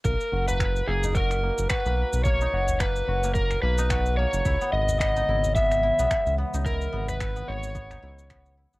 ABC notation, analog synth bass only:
X:1
M:4/4
L:1/16
Q:"Swing 16ths" 1/4=109
K:B
V:1 name="Analog synth bass" clef=bass
B,,, z F,,,4 F,,,4- F,,, F,,, z B,,, z B,,,- | B,,,2 F,,,4 F,,,4 B,,,4- B,,, F,,, | C,, z G,,,4 G,,,4- G,,, B,,, z C,, z C,,- | C,,2 G,,,4 G,,,4 C,,4- C,, G,,, |]